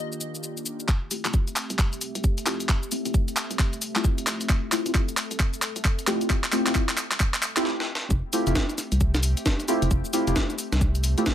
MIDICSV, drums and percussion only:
0, 0, Header, 1, 2, 480
1, 0, Start_track
1, 0, Key_signature, -1, "major"
1, 0, Tempo, 451128
1, 943, Time_signature, 4, 2, 24, 8
1, 12070, End_track
2, 0, Start_track
2, 0, Title_t, "Drums"
2, 130, Note_on_c, 9, 82, 25
2, 221, Note_off_c, 9, 82, 0
2, 221, Note_on_c, 9, 82, 65
2, 327, Note_off_c, 9, 82, 0
2, 369, Note_on_c, 9, 82, 29
2, 461, Note_off_c, 9, 82, 0
2, 461, Note_on_c, 9, 82, 38
2, 568, Note_off_c, 9, 82, 0
2, 609, Note_on_c, 9, 82, 27
2, 701, Note_off_c, 9, 82, 0
2, 701, Note_on_c, 9, 82, 66
2, 807, Note_off_c, 9, 82, 0
2, 850, Note_on_c, 9, 82, 28
2, 941, Note_off_c, 9, 82, 0
2, 941, Note_on_c, 9, 39, 45
2, 941, Note_on_c, 9, 82, 37
2, 942, Note_on_c, 9, 36, 115
2, 1047, Note_off_c, 9, 39, 0
2, 1047, Note_off_c, 9, 82, 0
2, 1048, Note_off_c, 9, 36, 0
2, 1181, Note_on_c, 9, 46, 107
2, 1181, Note_on_c, 9, 82, 67
2, 1287, Note_off_c, 9, 46, 0
2, 1287, Note_off_c, 9, 82, 0
2, 1329, Note_on_c, 9, 39, 43
2, 1329, Note_on_c, 9, 42, 59
2, 1329, Note_on_c, 9, 82, 29
2, 1421, Note_off_c, 9, 82, 0
2, 1421, Note_on_c, 9, 82, 38
2, 1422, Note_on_c, 9, 36, 109
2, 1435, Note_off_c, 9, 39, 0
2, 1435, Note_off_c, 9, 42, 0
2, 1527, Note_off_c, 9, 82, 0
2, 1529, Note_off_c, 9, 36, 0
2, 1569, Note_on_c, 9, 42, 36
2, 1569, Note_on_c, 9, 82, 27
2, 1660, Note_off_c, 9, 82, 0
2, 1660, Note_on_c, 9, 39, 51
2, 1660, Note_on_c, 9, 46, 90
2, 1660, Note_on_c, 9, 82, 64
2, 1676, Note_off_c, 9, 42, 0
2, 1767, Note_off_c, 9, 39, 0
2, 1767, Note_off_c, 9, 46, 0
2, 1767, Note_off_c, 9, 82, 0
2, 1809, Note_on_c, 9, 42, 61
2, 1809, Note_on_c, 9, 82, 29
2, 1901, Note_off_c, 9, 82, 0
2, 1901, Note_on_c, 9, 39, 49
2, 1901, Note_on_c, 9, 82, 39
2, 1903, Note_on_c, 9, 36, 117
2, 1916, Note_off_c, 9, 42, 0
2, 2008, Note_off_c, 9, 39, 0
2, 2008, Note_off_c, 9, 82, 0
2, 2009, Note_off_c, 9, 36, 0
2, 2051, Note_on_c, 9, 42, 35
2, 2051, Note_on_c, 9, 82, 26
2, 2142, Note_off_c, 9, 82, 0
2, 2142, Note_on_c, 9, 46, 98
2, 2142, Note_on_c, 9, 82, 66
2, 2157, Note_off_c, 9, 42, 0
2, 2248, Note_off_c, 9, 46, 0
2, 2248, Note_off_c, 9, 82, 0
2, 2291, Note_on_c, 9, 42, 65
2, 2291, Note_on_c, 9, 82, 29
2, 2382, Note_off_c, 9, 82, 0
2, 2382, Note_on_c, 9, 82, 38
2, 2383, Note_on_c, 9, 36, 106
2, 2397, Note_off_c, 9, 42, 0
2, 2488, Note_off_c, 9, 82, 0
2, 2489, Note_off_c, 9, 36, 0
2, 2530, Note_on_c, 9, 42, 49
2, 2530, Note_on_c, 9, 82, 28
2, 2621, Note_off_c, 9, 82, 0
2, 2621, Note_on_c, 9, 39, 56
2, 2621, Note_on_c, 9, 46, 93
2, 2621, Note_on_c, 9, 82, 68
2, 2637, Note_off_c, 9, 42, 0
2, 2728, Note_off_c, 9, 39, 0
2, 2728, Note_off_c, 9, 46, 0
2, 2728, Note_off_c, 9, 82, 0
2, 2769, Note_on_c, 9, 42, 60
2, 2769, Note_on_c, 9, 82, 29
2, 2861, Note_off_c, 9, 82, 0
2, 2861, Note_on_c, 9, 39, 56
2, 2861, Note_on_c, 9, 82, 38
2, 2863, Note_on_c, 9, 36, 123
2, 2876, Note_off_c, 9, 42, 0
2, 2967, Note_off_c, 9, 39, 0
2, 2967, Note_off_c, 9, 82, 0
2, 2969, Note_off_c, 9, 36, 0
2, 3011, Note_on_c, 9, 82, 27
2, 3103, Note_off_c, 9, 82, 0
2, 3103, Note_on_c, 9, 46, 102
2, 3103, Note_on_c, 9, 82, 67
2, 3209, Note_off_c, 9, 46, 0
2, 3209, Note_off_c, 9, 82, 0
2, 3250, Note_on_c, 9, 42, 60
2, 3250, Note_on_c, 9, 82, 28
2, 3342, Note_off_c, 9, 82, 0
2, 3342, Note_on_c, 9, 82, 37
2, 3343, Note_on_c, 9, 36, 115
2, 3356, Note_off_c, 9, 42, 0
2, 3448, Note_off_c, 9, 82, 0
2, 3449, Note_off_c, 9, 36, 0
2, 3491, Note_on_c, 9, 42, 35
2, 3491, Note_on_c, 9, 82, 28
2, 3581, Note_off_c, 9, 82, 0
2, 3581, Note_on_c, 9, 39, 61
2, 3581, Note_on_c, 9, 46, 94
2, 3581, Note_on_c, 9, 82, 65
2, 3598, Note_off_c, 9, 42, 0
2, 3688, Note_off_c, 9, 39, 0
2, 3688, Note_off_c, 9, 46, 0
2, 3688, Note_off_c, 9, 82, 0
2, 3731, Note_on_c, 9, 42, 61
2, 3731, Note_on_c, 9, 82, 30
2, 3821, Note_off_c, 9, 82, 0
2, 3821, Note_on_c, 9, 39, 66
2, 3821, Note_on_c, 9, 82, 40
2, 3823, Note_on_c, 9, 36, 117
2, 3837, Note_off_c, 9, 42, 0
2, 3927, Note_off_c, 9, 39, 0
2, 3927, Note_off_c, 9, 82, 0
2, 3929, Note_off_c, 9, 36, 0
2, 3969, Note_on_c, 9, 42, 33
2, 3969, Note_on_c, 9, 82, 27
2, 4061, Note_off_c, 9, 82, 0
2, 4061, Note_on_c, 9, 46, 99
2, 4061, Note_on_c, 9, 82, 65
2, 4076, Note_off_c, 9, 42, 0
2, 4167, Note_off_c, 9, 46, 0
2, 4167, Note_off_c, 9, 82, 0
2, 4209, Note_on_c, 9, 39, 60
2, 4209, Note_on_c, 9, 42, 60
2, 4209, Note_on_c, 9, 82, 29
2, 4300, Note_off_c, 9, 82, 0
2, 4300, Note_on_c, 9, 82, 41
2, 4302, Note_on_c, 9, 36, 119
2, 4315, Note_off_c, 9, 39, 0
2, 4315, Note_off_c, 9, 42, 0
2, 4407, Note_off_c, 9, 82, 0
2, 4409, Note_off_c, 9, 36, 0
2, 4449, Note_on_c, 9, 42, 50
2, 4449, Note_on_c, 9, 82, 27
2, 4541, Note_off_c, 9, 82, 0
2, 4541, Note_on_c, 9, 39, 69
2, 4541, Note_on_c, 9, 46, 91
2, 4541, Note_on_c, 9, 82, 67
2, 4556, Note_off_c, 9, 42, 0
2, 4647, Note_off_c, 9, 39, 0
2, 4647, Note_off_c, 9, 46, 0
2, 4647, Note_off_c, 9, 82, 0
2, 4689, Note_on_c, 9, 42, 65
2, 4689, Note_on_c, 9, 82, 29
2, 4781, Note_off_c, 9, 82, 0
2, 4781, Note_on_c, 9, 39, 72
2, 4781, Note_on_c, 9, 82, 41
2, 4782, Note_on_c, 9, 36, 126
2, 4796, Note_off_c, 9, 42, 0
2, 4887, Note_off_c, 9, 39, 0
2, 4887, Note_off_c, 9, 82, 0
2, 4889, Note_off_c, 9, 36, 0
2, 5022, Note_on_c, 9, 39, 74
2, 5022, Note_on_c, 9, 46, 102
2, 5022, Note_on_c, 9, 82, 72
2, 5128, Note_off_c, 9, 39, 0
2, 5128, Note_off_c, 9, 46, 0
2, 5128, Note_off_c, 9, 82, 0
2, 5170, Note_on_c, 9, 42, 64
2, 5170, Note_on_c, 9, 82, 31
2, 5262, Note_off_c, 9, 82, 0
2, 5262, Note_on_c, 9, 36, 116
2, 5262, Note_on_c, 9, 39, 74
2, 5262, Note_on_c, 9, 82, 38
2, 5277, Note_off_c, 9, 42, 0
2, 5369, Note_off_c, 9, 36, 0
2, 5369, Note_off_c, 9, 39, 0
2, 5369, Note_off_c, 9, 82, 0
2, 5411, Note_on_c, 9, 42, 36
2, 5411, Note_on_c, 9, 82, 30
2, 5502, Note_off_c, 9, 82, 0
2, 5502, Note_on_c, 9, 39, 78
2, 5502, Note_on_c, 9, 46, 89
2, 5502, Note_on_c, 9, 82, 72
2, 5517, Note_off_c, 9, 42, 0
2, 5609, Note_off_c, 9, 39, 0
2, 5609, Note_off_c, 9, 46, 0
2, 5609, Note_off_c, 9, 82, 0
2, 5651, Note_on_c, 9, 42, 61
2, 5651, Note_on_c, 9, 82, 30
2, 5742, Note_off_c, 9, 82, 0
2, 5742, Note_on_c, 9, 36, 124
2, 5742, Note_on_c, 9, 39, 85
2, 5742, Note_on_c, 9, 82, 42
2, 5757, Note_off_c, 9, 42, 0
2, 5848, Note_off_c, 9, 36, 0
2, 5848, Note_off_c, 9, 39, 0
2, 5848, Note_off_c, 9, 82, 0
2, 5889, Note_on_c, 9, 42, 32
2, 5889, Note_on_c, 9, 82, 28
2, 5981, Note_off_c, 9, 82, 0
2, 5981, Note_on_c, 9, 39, 77
2, 5981, Note_on_c, 9, 46, 93
2, 5981, Note_on_c, 9, 82, 70
2, 5996, Note_off_c, 9, 42, 0
2, 6087, Note_off_c, 9, 39, 0
2, 6087, Note_off_c, 9, 46, 0
2, 6087, Note_off_c, 9, 82, 0
2, 6129, Note_on_c, 9, 42, 63
2, 6129, Note_on_c, 9, 82, 30
2, 6220, Note_off_c, 9, 82, 0
2, 6220, Note_on_c, 9, 39, 90
2, 6220, Note_on_c, 9, 82, 43
2, 6222, Note_on_c, 9, 36, 123
2, 6235, Note_off_c, 9, 42, 0
2, 6327, Note_off_c, 9, 39, 0
2, 6327, Note_off_c, 9, 82, 0
2, 6328, Note_off_c, 9, 36, 0
2, 6370, Note_on_c, 9, 42, 49
2, 6370, Note_on_c, 9, 82, 27
2, 6461, Note_off_c, 9, 82, 0
2, 6461, Note_on_c, 9, 39, 92
2, 6461, Note_on_c, 9, 46, 89
2, 6461, Note_on_c, 9, 82, 73
2, 6476, Note_off_c, 9, 42, 0
2, 6567, Note_off_c, 9, 39, 0
2, 6567, Note_off_c, 9, 46, 0
2, 6567, Note_off_c, 9, 82, 0
2, 6610, Note_on_c, 9, 42, 62
2, 6610, Note_on_c, 9, 82, 31
2, 6702, Note_off_c, 9, 82, 0
2, 6702, Note_on_c, 9, 36, 123
2, 6702, Note_on_c, 9, 39, 88
2, 6702, Note_on_c, 9, 82, 41
2, 6716, Note_off_c, 9, 42, 0
2, 6808, Note_off_c, 9, 36, 0
2, 6808, Note_off_c, 9, 39, 0
2, 6808, Note_off_c, 9, 82, 0
2, 6850, Note_on_c, 9, 39, 78
2, 6850, Note_on_c, 9, 82, 29
2, 6941, Note_off_c, 9, 39, 0
2, 6941, Note_off_c, 9, 82, 0
2, 6941, Note_on_c, 9, 39, 94
2, 6941, Note_on_c, 9, 46, 101
2, 6941, Note_on_c, 9, 82, 72
2, 7047, Note_off_c, 9, 39, 0
2, 7047, Note_off_c, 9, 46, 0
2, 7047, Note_off_c, 9, 82, 0
2, 7090, Note_on_c, 9, 39, 84
2, 7090, Note_on_c, 9, 42, 66
2, 7090, Note_on_c, 9, 82, 33
2, 7181, Note_off_c, 9, 39, 0
2, 7181, Note_off_c, 9, 82, 0
2, 7181, Note_on_c, 9, 39, 90
2, 7181, Note_on_c, 9, 82, 43
2, 7182, Note_on_c, 9, 36, 121
2, 7197, Note_off_c, 9, 42, 0
2, 7288, Note_off_c, 9, 39, 0
2, 7288, Note_off_c, 9, 82, 0
2, 7289, Note_off_c, 9, 36, 0
2, 7329, Note_on_c, 9, 39, 88
2, 7329, Note_on_c, 9, 42, 35
2, 7329, Note_on_c, 9, 82, 30
2, 7421, Note_off_c, 9, 39, 0
2, 7421, Note_off_c, 9, 82, 0
2, 7421, Note_on_c, 9, 39, 97
2, 7421, Note_on_c, 9, 46, 89
2, 7421, Note_on_c, 9, 82, 72
2, 7436, Note_off_c, 9, 42, 0
2, 7527, Note_off_c, 9, 39, 0
2, 7527, Note_off_c, 9, 46, 0
2, 7527, Note_off_c, 9, 82, 0
2, 7569, Note_on_c, 9, 39, 85
2, 7569, Note_on_c, 9, 42, 65
2, 7569, Note_on_c, 9, 82, 32
2, 7661, Note_off_c, 9, 39, 0
2, 7661, Note_off_c, 9, 82, 0
2, 7661, Note_on_c, 9, 39, 102
2, 7661, Note_on_c, 9, 82, 43
2, 7662, Note_on_c, 9, 36, 123
2, 7675, Note_off_c, 9, 42, 0
2, 7767, Note_off_c, 9, 39, 0
2, 7767, Note_off_c, 9, 82, 0
2, 7769, Note_off_c, 9, 36, 0
2, 7810, Note_on_c, 9, 39, 83
2, 7810, Note_on_c, 9, 42, 35
2, 7810, Note_on_c, 9, 82, 30
2, 7901, Note_off_c, 9, 39, 0
2, 7901, Note_off_c, 9, 82, 0
2, 7901, Note_on_c, 9, 39, 101
2, 7901, Note_on_c, 9, 46, 100
2, 7901, Note_on_c, 9, 82, 72
2, 7916, Note_off_c, 9, 42, 0
2, 8007, Note_off_c, 9, 39, 0
2, 8007, Note_off_c, 9, 46, 0
2, 8007, Note_off_c, 9, 82, 0
2, 8050, Note_on_c, 9, 39, 92
2, 8050, Note_on_c, 9, 42, 62
2, 8050, Note_on_c, 9, 82, 33
2, 8141, Note_on_c, 9, 38, 69
2, 8156, Note_off_c, 9, 39, 0
2, 8156, Note_off_c, 9, 42, 0
2, 8156, Note_off_c, 9, 82, 0
2, 8248, Note_off_c, 9, 38, 0
2, 8301, Note_on_c, 9, 38, 83
2, 8408, Note_off_c, 9, 38, 0
2, 8462, Note_on_c, 9, 38, 98
2, 8568, Note_off_c, 9, 38, 0
2, 8622, Note_on_c, 9, 82, 41
2, 8623, Note_on_c, 9, 36, 123
2, 8728, Note_off_c, 9, 82, 0
2, 8730, Note_off_c, 9, 36, 0
2, 8862, Note_on_c, 9, 46, 108
2, 8862, Note_on_c, 9, 82, 75
2, 8969, Note_off_c, 9, 46, 0
2, 8969, Note_off_c, 9, 82, 0
2, 9010, Note_on_c, 9, 42, 67
2, 9010, Note_on_c, 9, 82, 31
2, 9102, Note_off_c, 9, 82, 0
2, 9102, Note_on_c, 9, 38, 116
2, 9102, Note_on_c, 9, 82, 38
2, 9103, Note_on_c, 9, 36, 116
2, 9117, Note_off_c, 9, 42, 0
2, 9208, Note_off_c, 9, 38, 0
2, 9208, Note_off_c, 9, 82, 0
2, 9210, Note_off_c, 9, 36, 0
2, 9251, Note_on_c, 9, 42, 38
2, 9251, Note_on_c, 9, 82, 29
2, 9342, Note_off_c, 9, 82, 0
2, 9342, Note_on_c, 9, 40, 31
2, 9342, Note_on_c, 9, 46, 94
2, 9342, Note_on_c, 9, 82, 71
2, 9357, Note_off_c, 9, 42, 0
2, 9448, Note_off_c, 9, 40, 0
2, 9448, Note_off_c, 9, 46, 0
2, 9448, Note_off_c, 9, 82, 0
2, 9489, Note_on_c, 9, 42, 66
2, 9489, Note_on_c, 9, 82, 30
2, 9581, Note_off_c, 9, 82, 0
2, 9581, Note_on_c, 9, 82, 40
2, 9583, Note_on_c, 9, 36, 121
2, 9595, Note_off_c, 9, 42, 0
2, 9688, Note_off_c, 9, 82, 0
2, 9690, Note_off_c, 9, 36, 0
2, 9730, Note_on_c, 9, 40, 72
2, 9730, Note_on_c, 9, 42, 37
2, 9730, Note_on_c, 9, 82, 27
2, 9821, Note_off_c, 9, 82, 0
2, 9821, Note_on_c, 9, 46, 102
2, 9821, Note_on_c, 9, 82, 70
2, 9837, Note_off_c, 9, 40, 0
2, 9837, Note_off_c, 9, 42, 0
2, 9928, Note_off_c, 9, 46, 0
2, 9928, Note_off_c, 9, 82, 0
2, 9971, Note_on_c, 9, 42, 64
2, 9971, Note_on_c, 9, 82, 30
2, 10063, Note_off_c, 9, 82, 0
2, 10063, Note_on_c, 9, 36, 117
2, 10063, Note_on_c, 9, 38, 118
2, 10063, Note_on_c, 9, 82, 41
2, 10078, Note_off_c, 9, 42, 0
2, 10169, Note_off_c, 9, 36, 0
2, 10169, Note_off_c, 9, 38, 0
2, 10169, Note_off_c, 9, 82, 0
2, 10211, Note_on_c, 9, 42, 51
2, 10211, Note_on_c, 9, 82, 27
2, 10302, Note_off_c, 9, 82, 0
2, 10302, Note_on_c, 9, 46, 98
2, 10302, Note_on_c, 9, 82, 68
2, 10317, Note_off_c, 9, 42, 0
2, 10408, Note_off_c, 9, 46, 0
2, 10408, Note_off_c, 9, 82, 0
2, 10451, Note_on_c, 9, 42, 69
2, 10451, Note_on_c, 9, 82, 30
2, 10542, Note_off_c, 9, 82, 0
2, 10542, Note_on_c, 9, 82, 42
2, 10543, Note_on_c, 9, 36, 125
2, 10557, Note_off_c, 9, 42, 0
2, 10649, Note_off_c, 9, 82, 0
2, 10650, Note_off_c, 9, 36, 0
2, 10691, Note_on_c, 9, 82, 29
2, 10782, Note_off_c, 9, 82, 0
2, 10782, Note_on_c, 9, 46, 112
2, 10782, Note_on_c, 9, 82, 71
2, 10889, Note_off_c, 9, 46, 0
2, 10889, Note_off_c, 9, 82, 0
2, 10931, Note_on_c, 9, 42, 64
2, 10931, Note_on_c, 9, 82, 30
2, 11022, Note_off_c, 9, 82, 0
2, 11022, Note_on_c, 9, 38, 119
2, 11022, Note_on_c, 9, 82, 41
2, 11023, Note_on_c, 9, 36, 118
2, 11038, Note_off_c, 9, 42, 0
2, 11128, Note_off_c, 9, 38, 0
2, 11128, Note_off_c, 9, 82, 0
2, 11130, Note_off_c, 9, 36, 0
2, 11170, Note_on_c, 9, 42, 36
2, 11170, Note_on_c, 9, 82, 30
2, 11262, Note_off_c, 9, 82, 0
2, 11262, Note_on_c, 9, 46, 95
2, 11262, Note_on_c, 9, 82, 71
2, 11277, Note_off_c, 9, 42, 0
2, 11369, Note_off_c, 9, 46, 0
2, 11369, Note_off_c, 9, 82, 0
2, 11412, Note_on_c, 9, 38, 66
2, 11412, Note_on_c, 9, 42, 64
2, 11412, Note_on_c, 9, 82, 29
2, 11503, Note_off_c, 9, 82, 0
2, 11503, Note_on_c, 9, 36, 125
2, 11503, Note_on_c, 9, 82, 41
2, 11518, Note_off_c, 9, 38, 0
2, 11518, Note_off_c, 9, 42, 0
2, 11609, Note_off_c, 9, 82, 0
2, 11610, Note_off_c, 9, 36, 0
2, 11651, Note_on_c, 9, 42, 35
2, 11651, Note_on_c, 9, 82, 28
2, 11742, Note_off_c, 9, 82, 0
2, 11742, Note_on_c, 9, 46, 105
2, 11742, Note_on_c, 9, 82, 71
2, 11757, Note_off_c, 9, 42, 0
2, 11849, Note_off_c, 9, 46, 0
2, 11849, Note_off_c, 9, 82, 0
2, 11892, Note_on_c, 9, 42, 62
2, 11892, Note_on_c, 9, 82, 30
2, 11982, Note_off_c, 9, 82, 0
2, 11982, Note_on_c, 9, 38, 127
2, 11982, Note_on_c, 9, 82, 39
2, 11983, Note_on_c, 9, 36, 122
2, 11998, Note_off_c, 9, 42, 0
2, 12070, Note_off_c, 9, 36, 0
2, 12070, Note_off_c, 9, 38, 0
2, 12070, Note_off_c, 9, 82, 0
2, 12070, End_track
0, 0, End_of_file